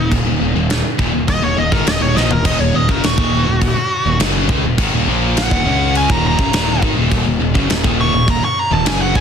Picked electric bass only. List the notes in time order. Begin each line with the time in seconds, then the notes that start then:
Already playing: D#1
0.12 D#1
0.25 D#1
0.41 D#1
0.55 D#1
0.99 D#1
1.13 D#1
1.28 D#1
1.42 D#1
1.57 D#1
1.72 G#1
1.86 D#1
2.01 D#1
2.17 A#1
2.31 D#1
2.45 D#1
2.60 D#1
2.74 D#1
2.89 F#1
3.03 D#1
3.18 D#1
3.47 D#1
3.62 D#1
3.76 muted picked electric bass stroke
4.05 D#1
4.20 F#1
4.49 C#2
4.64 D#1
4.79 G#1
4.93 D#1
5.07 A#1
5.51 D#1
5.65 C#2
6.10 D#1
6.39 F#1
6.53 D#1
6.83 G#1
6.97 D#1
7.11 D#1
7.26 D#1
7.41 D#1
7.56 F#1
7.70 D#1
7.84 D#1
8.13 D#1
8.28 D#1
8.42 muted picked electric bass stroke
8.71 D#1
8.86 F#1
9.15 C#2